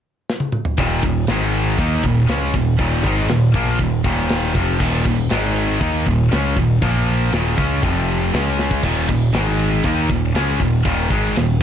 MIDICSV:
0, 0, Header, 1, 4, 480
1, 0, Start_track
1, 0, Tempo, 503356
1, 750, Time_signature, 4, 2, 24, 8
1, 11089, End_track
2, 0, Start_track
2, 0, Title_t, "Distorted electric guitar"
2, 0, Program_c, 0, 30
2, 745, Note_on_c, 0, 39, 93
2, 751, Note_on_c, 0, 46, 87
2, 756, Note_on_c, 0, 51, 92
2, 980, Note_off_c, 0, 39, 0
2, 983, Note_off_c, 0, 46, 0
2, 985, Note_off_c, 0, 51, 0
2, 990, Note_on_c, 0, 39, 63
2, 997, Note_on_c, 0, 46, 67
2, 1181, Note_off_c, 0, 39, 0
2, 1185, Note_off_c, 0, 46, 0
2, 1230, Note_on_c, 0, 44, 91
2, 1231, Note_on_c, 0, 51, 88
2, 1236, Note_on_c, 0, 56, 86
2, 1698, Note_off_c, 0, 51, 0
2, 1701, Note_off_c, 0, 44, 0
2, 1704, Note_off_c, 0, 56, 0
2, 1709, Note_on_c, 0, 51, 92
2, 1715, Note_on_c, 0, 58, 88
2, 1718, Note_on_c, 0, 63, 94
2, 1940, Note_off_c, 0, 51, 0
2, 1943, Note_off_c, 0, 58, 0
2, 1945, Note_off_c, 0, 63, 0
2, 1945, Note_on_c, 0, 39, 70
2, 1950, Note_on_c, 0, 46, 73
2, 2137, Note_off_c, 0, 39, 0
2, 2139, Note_off_c, 0, 46, 0
2, 2183, Note_on_c, 0, 49, 88
2, 2188, Note_on_c, 0, 61, 96
2, 2189, Note_on_c, 0, 56, 85
2, 2417, Note_off_c, 0, 49, 0
2, 2419, Note_off_c, 0, 56, 0
2, 2419, Note_off_c, 0, 61, 0
2, 2429, Note_on_c, 0, 39, 73
2, 2432, Note_on_c, 0, 46, 69
2, 2618, Note_off_c, 0, 39, 0
2, 2620, Note_off_c, 0, 46, 0
2, 2658, Note_on_c, 0, 39, 92
2, 2665, Note_on_c, 0, 46, 111
2, 2667, Note_on_c, 0, 51, 98
2, 2893, Note_off_c, 0, 39, 0
2, 2897, Note_off_c, 0, 46, 0
2, 2898, Note_off_c, 0, 51, 0
2, 2901, Note_on_c, 0, 44, 92
2, 2908, Note_on_c, 0, 51, 84
2, 2913, Note_on_c, 0, 56, 113
2, 3135, Note_off_c, 0, 44, 0
2, 3138, Note_off_c, 0, 51, 0
2, 3141, Note_off_c, 0, 56, 0
2, 3143, Note_on_c, 0, 39, 63
2, 3144, Note_on_c, 0, 46, 68
2, 3334, Note_off_c, 0, 39, 0
2, 3335, Note_off_c, 0, 46, 0
2, 3383, Note_on_c, 0, 46, 90
2, 3387, Note_on_c, 0, 53, 116
2, 3387, Note_on_c, 0, 58, 105
2, 3611, Note_off_c, 0, 46, 0
2, 3617, Note_off_c, 0, 53, 0
2, 3617, Note_off_c, 0, 58, 0
2, 3620, Note_on_c, 0, 39, 63
2, 3622, Note_on_c, 0, 46, 66
2, 3812, Note_off_c, 0, 39, 0
2, 3813, Note_off_c, 0, 46, 0
2, 3853, Note_on_c, 0, 39, 98
2, 3858, Note_on_c, 0, 46, 112
2, 3864, Note_on_c, 0, 51, 102
2, 4328, Note_off_c, 0, 39, 0
2, 4331, Note_off_c, 0, 46, 0
2, 4332, Note_on_c, 0, 41, 110
2, 4334, Note_off_c, 0, 51, 0
2, 4338, Note_on_c, 0, 48, 110
2, 4340, Note_on_c, 0, 53, 107
2, 4568, Note_off_c, 0, 41, 0
2, 4571, Note_off_c, 0, 48, 0
2, 4572, Note_on_c, 0, 39, 91
2, 4573, Note_off_c, 0, 53, 0
2, 4576, Note_on_c, 0, 46, 84
2, 4581, Note_on_c, 0, 51, 99
2, 4808, Note_off_c, 0, 39, 0
2, 4810, Note_off_c, 0, 46, 0
2, 4813, Note_off_c, 0, 51, 0
2, 4819, Note_on_c, 0, 39, 63
2, 4825, Note_on_c, 0, 46, 70
2, 5011, Note_off_c, 0, 39, 0
2, 5014, Note_off_c, 0, 46, 0
2, 5062, Note_on_c, 0, 44, 91
2, 5067, Note_on_c, 0, 51, 96
2, 5069, Note_on_c, 0, 56, 89
2, 5528, Note_off_c, 0, 51, 0
2, 5533, Note_off_c, 0, 44, 0
2, 5537, Note_off_c, 0, 56, 0
2, 5539, Note_on_c, 0, 51, 93
2, 5543, Note_on_c, 0, 58, 96
2, 5548, Note_on_c, 0, 63, 96
2, 5772, Note_off_c, 0, 51, 0
2, 5774, Note_off_c, 0, 58, 0
2, 5776, Note_off_c, 0, 63, 0
2, 5787, Note_on_c, 0, 39, 71
2, 5787, Note_on_c, 0, 46, 76
2, 5974, Note_off_c, 0, 46, 0
2, 5975, Note_off_c, 0, 39, 0
2, 6020, Note_on_c, 0, 49, 94
2, 6026, Note_on_c, 0, 56, 94
2, 6028, Note_on_c, 0, 61, 101
2, 6252, Note_off_c, 0, 49, 0
2, 6255, Note_off_c, 0, 56, 0
2, 6256, Note_off_c, 0, 61, 0
2, 6265, Note_on_c, 0, 39, 71
2, 6270, Note_on_c, 0, 46, 69
2, 6454, Note_off_c, 0, 39, 0
2, 6456, Note_off_c, 0, 46, 0
2, 6500, Note_on_c, 0, 46, 97
2, 6504, Note_on_c, 0, 53, 100
2, 6505, Note_on_c, 0, 58, 97
2, 6972, Note_off_c, 0, 46, 0
2, 6974, Note_off_c, 0, 53, 0
2, 6975, Note_off_c, 0, 58, 0
2, 6983, Note_on_c, 0, 39, 86
2, 6987, Note_on_c, 0, 46, 94
2, 6993, Note_on_c, 0, 51, 98
2, 7214, Note_off_c, 0, 39, 0
2, 7214, Note_off_c, 0, 46, 0
2, 7218, Note_on_c, 0, 49, 97
2, 7219, Note_off_c, 0, 51, 0
2, 7223, Note_on_c, 0, 56, 108
2, 7228, Note_on_c, 0, 61, 117
2, 7452, Note_off_c, 0, 49, 0
2, 7454, Note_off_c, 0, 56, 0
2, 7457, Note_off_c, 0, 61, 0
2, 7458, Note_on_c, 0, 41, 89
2, 7462, Note_on_c, 0, 48, 99
2, 7464, Note_on_c, 0, 53, 104
2, 7932, Note_off_c, 0, 41, 0
2, 7935, Note_off_c, 0, 48, 0
2, 7935, Note_off_c, 0, 53, 0
2, 7944, Note_on_c, 0, 49, 85
2, 7946, Note_on_c, 0, 56, 99
2, 7955, Note_on_c, 0, 61, 96
2, 8416, Note_off_c, 0, 49, 0
2, 8417, Note_off_c, 0, 56, 0
2, 8422, Note_off_c, 0, 61, 0
2, 8424, Note_on_c, 0, 39, 87
2, 8425, Note_on_c, 0, 46, 88
2, 8430, Note_on_c, 0, 51, 104
2, 8656, Note_off_c, 0, 39, 0
2, 8657, Note_off_c, 0, 46, 0
2, 8659, Note_off_c, 0, 51, 0
2, 8666, Note_on_c, 0, 39, 62
2, 8669, Note_on_c, 0, 46, 66
2, 8857, Note_off_c, 0, 39, 0
2, 8858, Note_off_c, 0, 46, 0
2, 8905, Note_on_c, 0, 44, 94
2, 8909, Note_on_c, 0, 51, 86
2, 8912, Note_on_c, 0, 56, 110
2, 9378, Note_off_c, 0, 44, 0
2, 9380, Note_off_c, 0, 51, 0
2, 9382, Note_off_c, 0, 56, 0
2, 9393, Note_on_c, 0, 51, 84
2, 9397, Note_on_c, 0, 58, 97
2, 9403, Note_on_c, 0, 63, 100
2, 9623, Note_off_c, 0, 51, 0
2, 9624, Note_off_c, 0, 58, 0
2, 9627, Note_off_c, 0, 63, 0
2, 9634, Note_on_c, 0, 39, 66
2, 9637, Note_on_c, 0, 46, 68
2, 9823, Note_off_c, 0, 39, 0
2, 9824, Note_off_c, 0, 46, 0
2, 9873, Note_on_c, 0, 49, 88
2, 9877, Note_on_c, 0, 56, 99
2, 9881, Note_on_c, 0, 61, 105
2, 10103, Note_off_c, 0, 49, 0
2, 10105, Note_off_c, 0, 56, 0
2, 10107, Note_off_c, 0, 61, 0
2, 10113, Note_on_c, 0, 39, 66
2, 10115, Note_on_c, 0, 46, 74
2, 10303, Note_off_c, 0, 39, 0
2, 10304, Note_off_c, 0, 46, 0
2, 10347, Note_on_c, 0, 39, 96
2, 10353, Note_on_c, 0, 46, 95
2, 10357, Note_on_c, 0, 51, 99
2, 10581, Note_off_c, 0, 39, 0
2, 10584, Note_off_c, 0, 46, 0
2, 10586, Note_off_c, 0, 51, 0
2, 10593, Note_on_c, 0, 44, 88
2, 10599, Note_on_c, 0, 51, 82
2, 10602, Note_on_c, 0, 56, 102
2, 10825, Note_off_c, 0, 44, 0
2, 10828, Note_off_c, 0, 51, 0
2, 10829, Note_off_c, 0, 56, 0
2, 10830, Note_on_c, 0, 39, 63
2, 10835, Note_on_c, 0, 46, 68
2, 11023, Note_off_c, 0, 39, 0
2, 11025, Note_off_c, 0, 46, 0
2, 11089, End_track
3, 0, Start_track
3, 0, Title_t, "Picked electric bass"
3, 0, Program_c, 1, 34
3, 749, Note_on_c, 1, 27, 97
3, 972, Note_off_c, 1, 27, 0
3, 982, Note_on_c, 1, 27, 84
3, 1208, Note_off_c, 1, 27, 0
3, 1220, Note_on_c, 1, 32, 85
3, 1669, Note_off_c, 1, 32, 0
3, 1700, Note_on_c, 1, 39, 96
3, 1926, Note_off_c, 1, 39, 0
3, 1944, Note_on_c, 1, 27, 90
3, 2168, Note_off_c, 1, 27, 0
3, 2188, Note_on_c, 1, 37, 101
3, 2409, Note_off_c, 1, 37, 0
3, 2421, Note_on_c, 1, 27, 78
3, 2645, Note_off_c, 1, 27, 0
3, 2658, Note_on_c, 1, 27, 89
3, 2884, Note_off_c, 1, 27, 0
3, 2899, Note_on_c, 1, 32, 104
3, 3124, Note_off_c, 1, 32, 0
3, 3145, Note_on_c, 1, 27, 81
3, 3367, Note_off_c, 1, 27, 0
3, 3376, Note_on_c, 1, 34, 96
3, 3601, Note_off_c, 1, 34, 0
3, 3619, Note_on_c, 1, 27, 84
3, 3843, Note_off_c, 1, 27, 0
3, 3857, Note_on_c, 1, 27, 102
3, 4304, Note_off_c, 1, 27, 0
3, 4344, Note_on_c, 1, 29, 104
3, 4565, Note_off_c, 1, 29, 0
3, 4581, Note_on_c, 1, 27, 92
3, 4803, Note_off_c, 1, 27, 0
3, 4817, Note_on_c, 1, 27, 88
3, 5041, Note_off_c, 1, 27, 0
3, 5059, Note_on_c, 1, 32, 88
3, 5505, Note_off_c, 1, 32, 0
3, 5539, Note_on_c, 1, 39, 88
3, 5762, Note_off_c, 1, 39, 0
3, 5786, Note_on_c, 1, 27, 94
3, 6006, Note_off_c, 1, 27, 0
3, 6023, Note_on_c, 1, 37, 97
3, 6244, Note_off_c, 1, 37, 0
3, 6263, Note_on_c, 1, 27, 78
3, 6484, Note_off_c, 1, 27, 0
3, 6505, Note_on_c, 1, 34, 87
3, 6949, Note_off_c, 1, 34, 0
3, 6983, Note_on_c, 1, 27, 88
3, 7205, Note_off_c, 1, 27, 0
3, 7231, Note_on_c, 1, 37, 92
3, 7449, Note_off_c, 1, 37, 0
3, 7465, Note_on_c, 1, 29, 88
3, 7910, Note_off_c, 1, 29, 0
3, 7950, Note_on_c, 1, 37, 99
3, 8393, Note_off_c, 1, 37, 0
3, 8429, Note_on_c, 1, 27, 96
3, 8650, Note_off_c, 1, 27, 0
3, 8666, Note_on_c, 1, 27, 83
3, 8888, Note_off_c, 1, 27, 0
3, 8904, Note_on_c, 1, 32, 99
3, 9351, Note_off_c, 1, 32, 0
3, 9387, Note_on_c, 1, 39, 96
3, 9610, Note_off_c, 1, 39, 0
3, 9632, Note_on_c, 1, 27, 87
3, 9853, Note_off_c, 1, 27, 0
3, 9861, Note_on_c, 1, 37, 112
3, 10088, Note_off_c, 1, 37, 0
3, 10110, Note_on_c, 1, 27, 77
3, 10333, Note_off_c, 1, 27, 0
3, 10350, Note_on_c, 1, 27, 89
3, 10573, Note_off_c, 1, 27, 0
3, 10592, Note_on_c, 1, 32, 102
3, 10815, Note_off_c, 1, 32, 0
3, 10842, Note_on_c, 1, 27, 78
3, 11061, Note_off_c, 1, 27, 0
3, 11089, End_track
4, 0, Start_track
4, 0, Title_t, "Drums"
4, 282, Note_on_c, 9, 38, 74
4, 378, Note_off_c, 9, 38, 0
4, 383, Note_on_c, 9, 48, 72
4, 478, Note_off_c, 9, 48, 0
4, 499, Note_on_c, 9, 47, 77
4, 594, Note_off_c, 9, 47, 0
4, 620, Note_on_c, 9, 43, 101
4, 715, Note_off_c, 9, 43, 0
4, 735, Note_on_c, 9, 51, 98
4, 745, Note_on_c, 9, 36, 113
4, 830, Note_off_c, 9, 51, 0
4, 840, Note_off_c, 9, 36, 0
4, 976, Note_on_c, 9, 51, 77
4, 983, Note_on_c, 9, 36, 94
4, 1071, Note_off_c, 9, 51, 0
4, 1078, Note_off_c, 9, 36, 0
4, 1211, Note_on_c, 9, 51, 107
4, 1223, Note_on_c, 9, 38, 119
4, 1307, Note_off_c, 9, 51, 0
4, 1318, Note_off_c, 9, 38, 0
4, 1454, Note_on_c, 9, 51, 76
4, 1549, Note_off_c, 9, 51, 0
4, 1700, Note_on_c, 9, 51, 103
4, 1703, Note_on_c, 9, 36, 108
4, 1796, Note_off_c, 9, 51, 0
4, 1798, Note_off_c, 9, 36, 0
4, 1935, Note_on_c, 9, 51, 73
4, 1943, Note_on_c, 9, 36, 94
4, 2031, Note_off_c, 9, 51, 0
4, 2038, Note_off_c, 9, 36, 0
4, 2178, Note_on_c, 9, 51, 109
4, 2190, Note_on_c, 9, 38, 126
4, 2273, Note_off_c, 9, 51, 0
4, 2285, Note_off_c, 9, 38, 0
4, 2418, Note_on_c, 9, 51, 67
4, 2422, Note_on_c, 9, 36, 91
4, 2513, Note_off_c, 9, 51, 0
4, 2517, Note_off_c, 9, 36, 0
4, 2656, Note_on_c, 9, 51, 108
4, 2659, Note_on_c, 9, 36, 115
4, 2751, Note_off_c, 9, 51, 0
4, 2754, Note_off_c, 9, 36, 0
4, 2895, Note_on_c, 9, 51, 78
4, 2899, Note_on_c, 9, 36, 100
4, 2990, Note_off_c, 9, 51, 0
4, 2994, Note_off_c, 9, 36, 0
4, 3132, Note_on_c, 9, 51, 97
4, 3143, Note_on_c, 9, 38, 102
4, 3227, Note_off_c, 9, 51, 0
4, 3239, Note_off_c, 9, 38, 0
4, 3372, Note_on_c, 9, 51, 70
4, 3376, Note_on_c, 9, 36, 108
4, 3468, Note_off_c, 9, 51, 0
4, 3472, Note_off_c, 9, 36, 0
4, 3612, Note_on_c, 9, 51, 87
4, 3616, Note_on_c, 9, 36, 92
4, 3707, Note_off_c, 9, 51, 0
4, 3712, Note_off_c, 9, 36, 0
4, 3854, Note_on_c, 9, 51, 68
4, 3856, Note_on_c, 9, 36, 111
4, 3950, Note_off_c, 9, 51, 0
4, 3952, Note_off_c, 9, 36, 0
4, 4093, Note_on_c, 9, 51, 107
4, 4105, Note_on_c, 9, 38, 127
4, 4189, Note_off_c, 9, 51, 0
4, 4200, Note_off_c, 9, 38, 0
4, 4339, Note_on_c, 9, 36, 94
4, 4342, Note_on_c, 9, 51, 70
4, 4435, Note_off_c, 9, 36, 0
4, 4437, Note_off_c, 9, 51, 0
4, 4579, Note_on_c, 9, 36, 109
4, 4581, Note_on_c, 9, 49, 101
4, 4675, Note_off_c, 9, 36, 0
4, 4676, Note_off_c, 9, 49, 0
4, 4819, Note_on_c, 9, 36, 97
4, 4819, Note_on_c, 9, 51, 74
4, 4914, Note_off_c, 9, 51, 0
4, 4915, Note_off_c, 9, 36, 0
4, 5054, Note_on_c, 9, 51, 104
4, 5065, Note_on_c, 9, 38, 122
4, 5149, Note_off_c, 9, 51, 0
4, 5161, Note_off_c, 9, 38, 0
4, 5301, Note_on_c, 9, 51, 80
4, 5396, Note_off_c, 9, 51, 0
4, 5539, Note_on_c, 9, 51, 107
4, 5541, Note_on_c, 9, 36, 94
4, 5634, Note_off_c, 9, 51, 0
4, 5636, Note_off_c, 9, 36, 0
4, 5784, Note_on_c, 9, 36, 94
4, 5787, Note_on_c, 9, 51, 72
4, 5879, Note_off_c, 9, 36, 0
4, 5883, Note_off_c, 9, 51, 0
4, 6023, Note_on_c, 9, 51, 106
4, 6035, Note_on_c, 9, 38, 116
4, 6119, Note_off_c, 9, 51, 0
4, 6130, Note_off_c, 9, 38, 0
4, 6260, Note_on_c, 9, 51, 72
4, 6262, Note_on_c, 9, 36, 88
4, 6355, Note_off_c, 9, 51, 0
4, 6357, Note_off_c, 9, 36, 0
4, 6505, Note_on_c, 9, 36, 113
4, 6508, Note_on_c, 9, 51, 107
4, 6600, Note_off_c, 9, 36, 0
4, 6603, Note_off_c, 9, 51, 0
4, 6750, Note_on_c, 9, 51, 75
4, 6845, Note_off_c, 9, 51, 0
4, 6985, Note_on_c, 9, 51, 98
4, 6997, Note_on_c, 9, 38, 117
4, 7081, Note_off_c, 9, 51, 0
4, 7092, Note_off_c, 9, 38, 0
4, 7227, Note_on_c, 9, 36, 108
4, 7227, Note_on_c, 9, 51, 75
4, 7322, Note_off_c, 9, 36, 0
4, 7322, Note_off_c, 9, 51, 0
4, 7469, Note_on_c, 9, 36, 109
4, 7472, Note_on_c, 9, 51, 89
4, 7564, Note_off_c, 9, 36, 0
4, 7567, Note_off_c, 9, 51, 0
4, 7707, Note_on_c, 9, 51, 74
4, 7802, Note_off_c, 9, 51, 0
4, 7949, Note_on_c, 9, 51, 107
4, 7960, Note_on_c, 9, 38, 116
4, 8044, Note_off_c, 9, 51, 0
4, 8055, Note_off_c, 9, 38, 0
4, 8194, Note_on_c, 9, 38, 62
4, 8289, Note_off_c, 9, 38, 0
4, 8306, Note_on_c, 9, 36, 91
4, 8401, Note_off_c, 9, 36, 0
4, 8421, Note_on_c, 9, 49, 103
4, 8421, Note_on_c, 9, 51, 102
4, 8425, Note_on_c, 9, 36, 94
4, 8516, Note_off_c, 9, 49, 0
4, 8516, Note_off_c, 9, 51, 0
4, 8520, Note_off_c, 9, 36, 0
4, 8667, Note_on_c, 9, 36, 90
4, 8669, Note_on_c, 9, 51, 68
4, 8762, Note_off_c, 9, 36, 0
4, 8765, Note_off_c, 9, 51, 0
4, 8902, Note_on_c, 9, 51, 95
4, 8913, Note_on_c, 9, 38, 113
4, 8997, Note_off_c, 9, 51, 0
4, 9009, Note_off_c, 9, 38, 0
4, 9149, Note_on_c, 9, 51, 75
4, 9244, Note_off_c, 9, 51, 0
4, 9380, Note_on_c, 9, 51, 92
4, 9386, Note_on_c, 9, 36, 105
4, 9475, Note_off_c, 9, 51, 0
4, 9481, Note_off_c, 9, 36, 0
4, 9628, Note_on_c, 9, 36, 93
4, 9632, Note_on_c, 9, 51, 78
4, 9723, Note_off_c, 9, 36, 0
4, 9727, Note_off_c, 9, 51, 0
4, 9871, Note_on_c, 9, 51, 106
4, 9882, Note_on_c, 9, 38, 127
4, 9966, Note_off_c, 9, 51, 0
4, 9978, Note_off_c, 9, 38, 0
4, 10108, Note_on_c, 9, 36, 87
4, 10113, Note_on_c, 9, 51, 62
4, 10204, Note_off_c, 9, 36, 0
4, 10208, Note_off_c, 9, 51, 0
4, 10346, Note_on_c, 9, 51, 116
4, 10349, Note_on_c, 9, 36, 118
4, 10442, Note_off_c, 9, 51, 0
4, 10444, Note_off_c, 9, 36, 0
4, 10589, Note_on_c, 9, 36, 100
4, 10589, Note_on_c, 9, 51, 78
4, 10684, Note_off_c, 9, 51, 0
4, 10685, Note_off_c, 9, 36, 0
4, 10835, Note_on_c, 9, 51, 114
4, 10846, Note_on_c, 9, 38, 108
4, 10930, Note_off_c, 9, 51, 0
4, 10941, Note_off_c, 9, 38, 0
4, 11089, End_track
0, 0, End_of_file